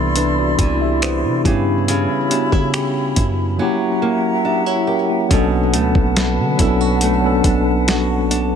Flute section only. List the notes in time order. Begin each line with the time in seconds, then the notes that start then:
Already playing: E4 D5 B5 C6
1.45 E4 C#5 B5
3.59 E5 F#5 A#5
5.31 B4 F#5 A5